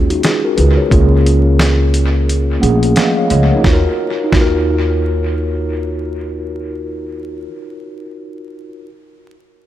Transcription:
Already playing: D#2 G#3 C#4 F4 F#4 G#4
0.10 D#4 F#4, closed hi-hat
0.23 F4 G#4, snare, closed hi-hat
0.45 F#4 A#4
0.57 C#2 G#4 B4, closed hi-hat
0.77 A#4 C#5
0.89 C#2 G#3 C#4 F4, kick, closed hi-hat
0.93 A#3 G#4
1.26 closed hi-hat
1.59 snare, closed hi-hat
1.94 closed hi-hat
2.29 closed hi-hat
2.59 A#1 F3 A3 C#4 F#5, closed hi-hat
2.64 A#3 G#4
2.83 closed hi-hat
2.96 D#5 F5 F#5, snare, closed hi-hat
3.17 C#5 F5
3.30 C#2 C#5 D#5, closed hi-hat
3.51 A#4 C#5
3.56 D#4
3.62 D#2 F4, kick, snare
3.67 F#4
3.73 A#4
4.24 D#4
4.30 D#2 F4, kick, snare
4.36 F#4
4.41 A#4

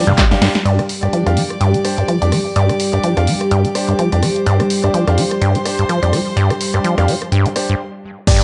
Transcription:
Already playing: G3 G4 D5 C6
0.07 G2 D4 G4 F5, closed hi-hat, mid tom
0.17 G3, kick, snare, clap, closed hi-hat
0.31 G2 D4 G4 F5, snare, closed hi-hat
0.41 G2, snare, open hi-hat, ride
0.55 snare, closed hi-hat
0.65 G2 G3 D4 G4 D5, closed hi-hat
0.74 D5
0.79 G3, cross-stick, closed hi-hat
0.85 G4, open hi-hat
0.97 D6
1.03 G2 D4 G4 D5, cross-stick, closed hi-hat
1.13 F3, closed hi-hat
1.26 F2 D4 G4 F5, cross-stick, closed hi-hat
1.37 G3, open hi-hat
1.50 cross-stick, closed hi-hat
1.60 G2 D4 G4 G5, closed hi-hat
1.74 G3, closed hi-hat
1.84 D4 G4 C5, cross-stick, open hi-hat
1.98 G2, closed hi-hat
2.08 F3, cross-stick, closed hi-hat
2.22 F2 D4 G4 D5, closed hi-hat
2.32 G3, cross-stick, open hi-hat
2.56 G2 D4 G4 D5, closed hi-hat
2.69 G3, cross-stick, closed hi-hat
2.80 open hi-hat
2.93 G2 D4 G4 D5, cross-stick, closed hi-hat
3.03 F3, closed hi-hat
3.17 F2 D4 G4 F5, cross-stick, closed hi-hat
3.27 G3, open hi-hat
3.41 cross-stick, closed hi-hat
3.51 G2 D4 G4 G5, closed hi-hat
3.65 G3, closed hi-hat
3.75 D4 G4 C5, cross-stick, open hi-hat
3.88 G2, closed hi-hat
3.99 F3, cross-stick, closed hi-hat
4.12 F2 D4 G4 D5, closed hi-hat
4.23 G3, cross-stick, open hi-hat
4.27 C5
4.36 closed hi-hat
4.46 G2 D4 G4 D5, closed hi-hat
4.60 G3, cross-stick, closed hi-hat
4.70 open hi-hat
4.84 G2 D4 G4 D5, cross-stick, closed hi-hat
4.93 F3 C6, closed hi-hat
5.07 F2 D4 G4 F5, cross-stick, closed hi-hat
5.18 G3, open hi-hat
5.31 cross-stick, closed hi-hat
5.41 G2 D4 G4 G5, closed hi-hat
5.55 G3, closed hi-hat
5.65 D4 G4 C5, cross-stick, open hi-hat
5.79 G2, closed hi-hat
5.89 F3, cross-stick, closed hi-hat
6.03 F2 D4 G4 D5, closed hi-hat
6.13 G3, cross-stick, open hi-hat
6.37 G2 D4 G4 D5, closed hi-hat
6.50 G3, cross-stick, closed hi-hat
6.61 open hi-hat
6.74 G2 D4 G4 D5, cross-stick
6.84 F3, closed hi-hat
6.98 F2 D4 G4 F5, cross-stick, closed hi-hat
7.08 G3, open hi-hat
7.22 cross-stick, closed hi-hat
7.32 G2 D4 G4 G5, closed hi-hat
7.45 G3, closed hi-hat
7.56 D4 G4 C5, cross-stick, open hi-hat
7.69 G2, closed hi-hat
8.27 G2 C4 D4 G4 C5 D5, kick, cross-stick, closed hi-hat, crash, downlifter
8.41 G3

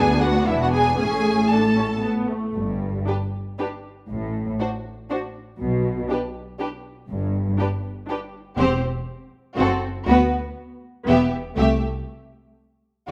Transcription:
Already playing: D2 B3 D4 G#4 G#5
0.22 F#4 F#5
0.47 E1 E2 B3 D4 E4 E5
0.61 F#4 F#5
0.73 G#4 G#5
0.98 A1 A2 A3 C#4 G#4 G#5
1.50 D4 A4 A5
1.77 C#4
2.03 B3
2.30 A3
2.56 G1 G2
3.07 D4 G4 B4
3.59 D4 G4 B4
4.09 A1 A2
4.60 D4 F#4 C5
5.09 D4 F#4 C5
5.60 B1 B2
6.10 D4 G4 B4
6.60 D4 G4 B4
7.09 G1 G2
7.59 D4 G4 B4
8.09 D4 G4 B4
8.58 E1 E2 C4 G4 C5
9.58 F#1 F#2 C4 F#4 A4
10.07 D2 B3 F#4 B4
11.07 E1 E2 B3 G4 E5
11.57 C2 A3 G4 E5

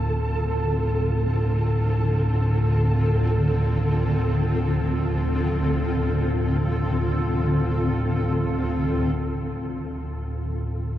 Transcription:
Already playing: D2 A2 D3 C4 F4 A4
9.17 D2 A2

